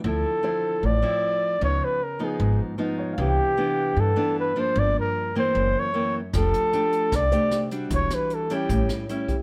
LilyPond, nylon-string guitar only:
\new Staff \with { instrumentName = "Nylon-string guitar" } { \time 4/4 \key d \dorian \tempo 4 = 152 << { <f c' e'>4 <f c' e'>4. <f c' e'>4. | <eis b dis'>4 r8 <eis b dis'>4. <eis b dis'>4 | <e b d'>4 <e b d'>4. <e b d'>4 <f bes d'>8~ | <f bes d'>4. <e bes c'>4. <e ais bis>8 r8 |
<a d' g'>4 <a d' g'>4. <a d' g'>4 <g d' fis'>8~ | <g d' fis'>4. <g cis' e'>4. <g cis' e'>8 r8 | } \\ { d2 a,2 | cis2 gis,2 | c2 r2 | g,2 fis,2 |
f2 c2 | e2 a,2 | } >> }